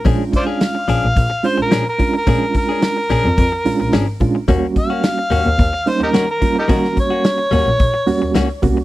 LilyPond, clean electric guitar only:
\new Staff \with { instrumentName = "Clean electric guitar" } { \time 4/4 \key ees \major \tempo 4 = 109 <f cis' d' aes'>16 r8 <cis' d' aes'>16 r8 <f cis' d' aes'>16 r4 r16 <f cis' d' aes'>16 r8. | <f cis' d' aes'>16 r8 <cis' d' aes'>16 r8 <f cis' d' aes'>16 r4 r16 <f cis' d' aes'>16 r8. | <g bes des' fis'>16 r8 <bes des' fis'>16 r8 <g bes des' fis'>16 r4 r16 <g bes des' fis'>16 r8. | <g bes des' fis'>16 r8 <bes des' fis'>16 r8 <g bes des' fis'>16 r4 r16 <g bes des' fis'>16 r8. | }